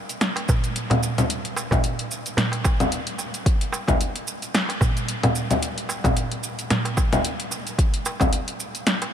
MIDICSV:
0, 0, Header, 1, 3, 480
1, 0, Start_track
1, 0, Tempo, 540541
1, 1150, Time_signature, 4, 2, 24, 8
1, 8110, End_track
2, 0, Start_track
2, 0, Title_t, "Darbuka"
2, 318, Note_on_c, 9, 63, 65
2, 406, Note_off_c, 9, 63, 0
2, 436, Note_on_c, 9, 64, 96
2, 525, Note_off_c, 9, 64, 0
2, 799, Note_on_c, 9, 62, 62
2, 802, Note_on_c, 9, 64, 84
2, 888, Note_off_c, 9, 62, 0
2, 891, Note_off_c, 9, 64, 0
2, 1051, Note_on_c, 9, 63, 39
2, 1139, Note_off_c, 9, 63, 0
2, 1389, Note_on_c, 9, 63, 64
2, 1478, Note_off_c, 9, 63, 0
2, 1518, Note_on_c, 9, 64, 85
2, 1532, Note_on_c, 9, 62, 51
2, 1606, Note_off_c, 9, 64, 0
2, 1620, Note_off_c, 9, 62, 0
2, 2104, Note_on_c, 9, 64, 87
2, 2193, Note_off_c, 9, 64, 0
2, 2236, Note_on_c, 9, 63, 64
2, 2325, Note_off_c, 9, 63, 0
2, 2344, Note_on_c, 9, 62, 34
2, 2348, Note_on_c, 9, 63, 80
2, 2433, Note_off_c, 9, 62, 0
2, 2437, Note_off_c, 9, 63, 0
2, 2827, Note_on_c, 9, 63, 36
2, 2835, Note_on_c, 9, 62, 30
2, 2916, Note_off_c, 9, 63, 0
2, 2924, Note_off_c, 9, 62, 0
2, 3307, Note_on_c, 9, 63, 65
2, 3396, Note_off_c, 9, 63, 0
2, 3441, Note_on_c, 9, 62, 58
2, 3530, Note_off_c, 9, 62, 0
2, 4163, Note_on_c, 9, 63, 55
2, 4252, Note_off_c, 9, 63, 0
2, 4269, Note_on_c, 9, 64, 99
2, 4358, Note_off_c, 9, 64, 0
2, 4648, Note_on_c, 9, 62, 69
2, 4653, Note_on_c, 9, 64, 80
2, 4737, Note_off_c, 9, 62, 0
2, 4742, Note_off_c, 9, 64, 0
2, 4896, Note_on_c, 9, 63, 34
2, 4985, Note_off_c, 9, 63, 0
2, 5230, Note_on_c, 9, 63, 61
2, 5318, Note_off_c, 9, 63, 0
2, 5364, Note_on_c, 9, 62, 65
2, 5366, Note_on_c, 9, 64, 83
2, 5453, Note_off_c, 9, 62, 0
2, 5455, Note_off_c, 9, 64, 0
2, 5957, Note_on_c, 9, 64, 83
2, 6046, Note_off_c, 9, 64, 0
2, 6083, Note_on_c, 9, 63, 59
2, 6172, Note_off_c, 9, 63, 0
2, 6190, Note_on_c, 9, 63, 73
2, 6193, Note_on_c, 9, 62, 34
2, 6279, Note_off_c, 9, 63, 0
2, 6282, Note_off_c, 9, 62, 0
2, 6669, Note_on_c, 9, 62, 31
2, 6672, Note_on_c, 9, 63, 34
2, 6757, Note_off_c, 9, 62, 0
2, 6761, Note_off_c, 9, 63, 0
2, 7157, Note_on_c, 9, 63, 64
2, 7246, Note_off_c, 9, 63, 0
2, 7279, Note_on_c, 9, 62, 66
2, 7367, Note_off_c, 9, 62, 0
2, 8009, Note_on_c, 9, 63, 61
2, 8098, Note_off_c, 9, 63, 0
2, 8110, End_track
3, 0, Start_track
3, 0, Title_t, "Drums"
3, 83, Note_on_c, 9, 42, 27
3, 85, Note_on_c, 9, 82, 45
3, 172, Note_off_c, 9, 42, 0
3, 174, Note_off_c, 9, 82, 0
3, 187, Note_on_c, 9, 38, 80
3, 187, Note_on_c, 9, 42, 63
3, 189, Note_on_c, 9, 82, 32
3, 276, Note_off_c, 9, 38, 0
3, 276, Note_off_c, 9, 42, 0
3, 277, Note_off_c, 9, 82, 0
3, 325, Note_on_c, 9, 42, 42
3, 413, Note_off_c, 9, 42, 0
3, 432, Note_on_c, 9, 36, 123
3, 433, Note_on_c, 9, 82, 82
3, 521, Note_off_c, 9, 36, 0
3, 522, Note_off_c, 9, 82, 0
3, 566, Note_on_c, 9, 42, 30
3, 567, Note_on_c, 9, 82, 47
3, 654, Note_off_c, 9, 42, 0
3, 656, Note_off_c, 9, 82, 0
3, 673, Note_on_c, 9, 42, 67
3, 675, Note_on_c, 9, 82, 35
3, 762, Note_off_c, 9, 42, 0
3, 764, Note_off_c, 9, 82, 0
3, 807, Note_on_c, 9, 42, 42
3, 807, Note_on_c, 9, 64, 76
3, 896, Note_off_c, 9, 42, 0
3, 896, Note_off_c, 9, 64, 0
3, 915, Note_on_c, 9, 82, 78
3, 1004, Note_off_c, 9, 82, 0
3, 1049, Note_on_c, 9, 42, 31
3, 1049, Note_on_c, 9, 64, 62
3, 1051, Note_on_c, 9, 82, 48
3, 1138, Note_off_c, 9, 42, 0
3, 1138, Note_off_c, 9, 64, 0
3, 1140, Note_off_c, 9, 82, 0
3, 1154, Note_on_c, 9, 42, 67
3, 1156, Note_on_c, 9, 82, 33
3, 1243, Note_off_c, 9, 42, 0
3, 1244, Note_off_c, 9, 82, 0
3, 1287, Note_on_c, 9, 42, 43
3, 1375, Note_off_c, 9, 42, 0
3, 1397, Note_on_c, 9, 82, 78
3, 1485, Note_off_c, 9, 82, 0
3, 1527, Note_on_c, 9, 36, 102
3, 1530, Note_on_c, 9, 42, 29
3, 1530, Note_on_c, 9, 64, 77
3, 1532, Note_on_c, 9, 82, 49
3, 1616, Note_off_c, 9, 36, 0
3, 1619, Note_off_c, 9, 42, 0
3, 1619, Note_off_c, 9, 64, 0
3, 1621, Note_off_c, 9, 82, 0
3, 1632, Note_on_c, 9, 42, 64
3, 1634, Note_on_c, 9, 82, 32
3, 1721, Note_off_c, 9, 42, 0
3, 1722, Note_off_c, 9, 82, 0
3, 1768, Note_on_c, 9, 42, 42
3, 1857, Note_off_c, 9, 42, 0
3, 1875, Note_on_c, 9, 82, 76
3, 1964, Note_off_c, 9, 82, 0
3, 2006, Note_on_c, 9, 42, 29
3, 2007, Note_on_c, 9, 82, 47
3, 2095, Note_off_c, 9, 42, 0
3, 2096, Note_off_c, 9, 82, 0
3, 2112, Note_on_c, 9, 38, 72
3, 2112, Note_on_c, 9, 42, 59
3, 2114, Note_on_c, 9, 82, 33
3, 2201, Note_off_c, 9, 38, 0
3, 2201, Note_off_c, 9, 42, 0
3, 2202, Note_off_c, 9, 82, 0
3, 2245, Note_on_c, 9, 42, 44
3, 2334, Note_off_c, 9, 42, 0
3, 2353, Note_on_c, 9, 82, 76
3, 2354, Note_on_c, 9, 36, 107
3, 2441, Note_off_c, 9, 82, 0
3, 2442, Note_off_c, 9, 36, 0
3, 2488, Note_on_c, 9, 42, 31
3, 2488, Note_on_c, 9, 64, 79
3, 2490, Note_on_c, 9, 82, 47
3, 2577, Note_off_c, 9, 42, 0
3, 2577, Note_off_c, 9, 64, 0
3, 2578, Note_off_c, 9, 82, 0
3, 2593, Note_on_c, 9, 42, 60
3, 2594, Note_on_c, 9, 82, 33
3, 2681, Note_off_c, 9, 42, 0
3, 2683, Note_off_c, 9, 82, 0
3, 2724, Note_on_c, 9, 42, 41
3, 2813, Note_off_c, 9, 42, 0
3, 2831, Note_on_c, 9, 82, 80
3, 2920, Note_off_c, 9, 82, 0
3, 2966, Note_on_c, 9, 42, 29
3, 2968, Note_on_c, 9, 82, 44
3, 3055, Note_off_c, 9, 42, 0
3, 3057, Note_off_c, 9, 82, 0
3, 3073, Note_on_c, 9, 36, 125
3, 3075, Note_on_c, 9, 42, 62
3, 3076, Note_on_c, 9, 82, 33
3, 3162, Note_off_c, 9, 36, 0
3, 3163, Note_off_c, 9, 42, 0
3, 3165, Note_off_c, 9, 82, 0
3, 3207, Note_on_c, 9, 42, 46
3, 3296, Note_off_c, 9, 42, 0
3, 3316, Note_on_c, 9, 82, 74
3, 3405, Note_off_c, 9, 82, 0
3, 3446, Note_on_c, 9, 36, 103
3, 3449, Note_on_c, 9, 42, 31
3, 3449, Note_on_c, 9, 64, 86
3, 3451, Note_on_c, 9, 82, 46
3, 3535, Note_off_c, 9, 36, 0
3, 3538, Note_off_c, 9, 42, 0
3, 3538, Note_off_c, 9, 64, 0
3, 3540, Note_off_c, 9, 82, 0
3, 3557, Note_on_c, 9, 42, 67
3, 3559, Note_on_c, 9, 82, 33
3, 3646, Note_off_c, 9, 42, 0
3, 3647, Note_off_c, 9, 82, 0
3, 3690, Note_on_c, 9, 42, 45
3, 3778, Note_off_c, 9, 42, 0
3, 3795, Note_on_c, 9, 82, 74
3, 3884, Note_off_c, 9, 82, 0
3, 3927, Note_on_c, 9, 42, 28
3, 3929, Note_on_c, 9, 82, 43
3, 4016, Note_off_c, 9, 42, 0
3, 4018, Note_off_c, 9, 82, 0
3, 4036, Note_on_c, 9, 38, 73
3, 4036, Note_on_c, 9, 42, 62
3, 4038, Note_on_c, 9, 82, 31
3, 4125, Note_off_c, 9, 38, 0
3, 4125, Note_off_c, 9, 42, 0
3, 4127, Note_off_c, 9, 82, 0
3, 4171, Note_on_c, 9, 42, 44
3, 4260, Note_off_c, 9, 42, 0
3, 4273, Note_on_c, 9, 36, 106
3, 4278, Note_on_c, 9, 82, 73
3, 4362, Note_off_c, 9, 36, 0
3, 4367, Note_off_c, 9, 82, 0
3, 4411, Note_on_c, 9, 42, 28
3, 4413, Note_on_c, 9, 82, 43
3, 4500, Note_off_c, 9, 42, 0
3, 4502, Note_off_c, 9, 82, 0
3, 4515, Note_on_c, 9, 42, 67
3, 4517, Note_on_c, 9, 82, 33
3, 4604, Note_off_c, 9, 42, 0
3, 4606, Note_off_c, 9, 82, 0
3, 4648, Note_on_c, 9, 42, 40
3, 4648, Note_on_c, 9, 64, 76
3, 4737, Note_off_c, 9, 42, 0
3, 4737, Note_off_c, 9, 64, 0
3, 4755, Note_on_c, 9, 82, 77
3, 4843, Note_off_c, 9, 82, 0
3, 4890, Note_on_c, 9, 42, 32
3, 4890, Note_on_c, 9, 64, 63
3, 4891, Note_on_c, 9, 82, 48
3, 4978, Note_off_c, 9, 42, 0
3, 4978, Note_off_c, 9, 64, 0
3, 4980, Note_off_c, 9, 82, 0
3, 4995, Note_on_c, 9, 42, 66
3, 4997, Note_on_c, 9, 82, 32
3, 5084, Note_off_c, 9, 42, 0
3, 5086, Note_off_c, 9, 82, 0
3, 5130, Note_on_c, 9, 42, 45
3, 5219, Note_off_c, 9, 42, 0
3, 5236, Note_on_c, 9, 82, 73
3, 5324, Note_off_c, 9, 82, 0
3, 5366, Note_on_c, 9, 36, 98
3, 5371, Note_on_c, 9, 42, 31
3, 5371, Note_on_c, 9, 64, 86
3, 5372, Note_on_c, 9, 82, 46
3, 5454, Note_off_c, 9, 36, 0
3, 5459, Note_off_c, 9, 42, 0
3, 5459, Note_off_c, 9, 64, 0
3, 5461, Note_off_c, 9, 82, 0
3, 5475, Note_on_c, 9, 42, 66
3, 5477, Note_on_c, 9, 82, 32
3, 5564, Note_off_c, 9, 42, 0
3, 5566, Note_off_c, 9, 82, 0
3, 5608, Note_on_c, 9, 42, 43
3, 5697, Note_off_c, 9, 42, 0
3, 5714, Note_on_c, 9, 82, 72
3, 5803, Note_off_c, 9, 82, 0
3, 5850, Note_on_c, 9, 42, 29
3, 5851, Note_on_c, 9, 82, 41
3, 5939, Note_off_c, 9, 42, 0
3, 5940, Note_off_c, 9, 82, 0
3, 5954, Note_on_c, 9, 38, 71
3, 5954, Note_on_c, 9, 42, 64
3, 5955, Note_on_c, 9, 82, 30
3, 6043, Note_off_c, 9, 38, 0
3, 6043, Note_off_c, 9, 42, 0
3, 6044, Note_off_c, 9, 82, 0
3, 6087, Note_on_c, 9, 42, 47
3, 6176, Note_off_c, 9, 42, 0
3, 6192, Note_on_c, 9, 36, 107
3, 6193, Note_on_c, 9, 82, 74
3, 6281, Note_off_c, 9, 36, 0
3, 6282, Note_off_c, 9, 82, 0
3, 6328, Note_on_c, 9, 42, 29
3, 6328, Note_on_c, 9, 64, 85
3, 6330, Note_on_c, 9, 82, 41
3, 6417, Note_off_c, 9, 42, 0
3, 6417, Note_off_c, 9, 64, 0
3, 6418, Note_off_c, 9, 82, 0
3, 6434, Note_on_c, 9, 42, 68
3, 6436, Note_on_c, 9, 82, 31
3, 6523, Note_off_c, 9, 42, 0
3, 6524, Note_off_c, 9, 82, 0
3, 6568, Note_on_c, 9, 42, 45
3, 6657, Note_off_c, 9, 42, 0
3, 6674, Note_on_c, 9, 82, 75
3, 6763, Note_off_c, 9, 82, 0
3, 6808, Note_on_c, 9, 42, 30
3, 6810, Note_on_c, 9, 82, 44
3, 6897, Note_off_c, 9, 42, 0
3, 6898, Note_off_c, 9, 82, 0
3, 6913, Note_on_c, 9, 36, 112
3, 6915, Note_on_c, 9, 42, 72
3, 6917, Note_on_c, 9, 82, 33
3, 7002, Note_off_c, 9, 36, 0
3, 7004, Note_off_c, 9, 42, 0
3, 7006, Note_off_c, 9, 82, 0
3, 7048, Note_on_c, 9, 42, 46
3, 7137, Note_off_c, 9, 42, 0
3, 7153, Note_on_c, 9, 82, 76
3, 7242, Note_off_c, 9, 82, 0
3, 7286, Note_on_c, 9, 36, 104
3, 7290, Note_on_c, 9, 42, 31
3, 7290, Note_on_c, 9, 64, 91
3, 7291, Note_on_c, 9, 82, 44
3, 7375, Note_off_c, 9, 36, 0
3, 7378, Note_off_c, 9, 42, 0
3, 7378, Note_off_c, 9, 64, 0
3, 7380, Note_off_c, 9, 82, 0
3, 7394, Note_on_c, 9, 42, 66
3, 7395, Note_on_c, 9, 82, 32
3, 7482, Note_off_c, 9, 42, 0
3, 7484, Note_off_c, 9, 82, 0
3, 7529, Note_on_c, 9, 42, 45
3, 7618, Note_off_c, 9, 42, 0
3, 7635, Note_on_c, 9, 82, 74
3, 7724, Note_off_c, 9, 82, 0
3, 7768, Note_on_c, 9, 42, 30
3, 7769, Note_on_c, 9, 82, 41
3, 7857, Note_off_c, 9, 42, 0
3, 7858, Note_off_c, 9, 82, 0
3, 7874, Note_on_c, 9, 38, 72
3, 7874, Note_on_c, 9, 42, 68
3, 7875, Note_on_c, 9, 82, 31
3, 7963, Note_off_c, 9, 38, 0
3, 7963, Note_off_c, 9, 42, 0
3, 7964, Note_off_c, 9, 82, 0
3, 8008, Note_on_c, 9, 42, 45
3, 8096, Note_off_c, 9, 42, 0
3, 8110, End_track
0, 0, End_of_file